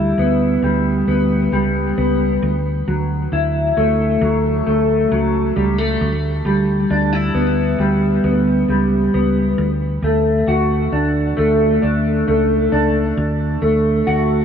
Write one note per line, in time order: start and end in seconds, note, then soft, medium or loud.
0.00 0.13 D2 medium
0.00 0.63 G3 medium
0.00 2.91 E4 medium
0.18 0.57 D2 medium
0.18 1.07 B3 medium
0.62 1.02 D2 medium
0.62 1.52 G3 medium
1.07 1.47 D2 medium
1.07 1.97 B3 medium
1.52 1.92 C#2 medium
1.52 2.51 G3 medium
1.98 2.37 C#2 medium
1.98 2.51 B3 medium
2.42 2.82 D2 medium
2.88 3.27 D2 medium
2.88 4.21 F#3 medium
3.32 3.71 D2 medium
3.32 6.83 E4 medium
3.77 4.16 D2 medium
3.77 4.65 A3 medium
4.21 4.61 D2 medium
4.21 5.10 F#3 medium
4.67 5.06 D2 medium
4.67 5.56 A3 medium
5.11 5.51 C#2 medium
5.11 6.10 F#3 medium
5.56 5.96 C#2 medium
5.56 5.78 G3 medium
5.78 6.10 A3 soft
6.01 6.40 D2 loud
6.45 6.84 D2 loud
6.45 7.78 G3 medium
6.90 7.29 D2 loud
6.90 7.13 D4 medium
7.13 9.68 E4 soft
7.34 7.74 D2 medium
7.34 8.23 B3 medium
7.78 8.18 D2 medium
7.78 8.68 G3 medium
8.24 8.63 D2 medium
8.24 9.13 B3 soft
8.68 9.08 C#2 medium
8.68 9.68 G3 medium
9.14 9.53 C#2 medium
9.14 9.68 B3 medium
9.58 9.98 D2 medium
10.02 10.42 D2 medium
10.02 11.36 A3 medium
10.47 10.87 D2 medium
10.47 13.98 F#4 medium
10.92 11.32 D2 medium
10.92 11.82 D4 medium
11.37 11.77 D2 medium
11.37 12.27 A3 medium
11.82 12.22 D2 medium
11.82 12.72 D4 medium
12.28 12.67 C#2 medium
12.28 13.62 A3 medium
12.72 13.12 C#2 medium
12.72 14.45 D4 medium
13.17 13.57 D2 loud
13.62 14.01 D2 medium
13.62 14.45 A3 medium
14.07 14.45 D2 medium
14.07 14.45 F#4 medium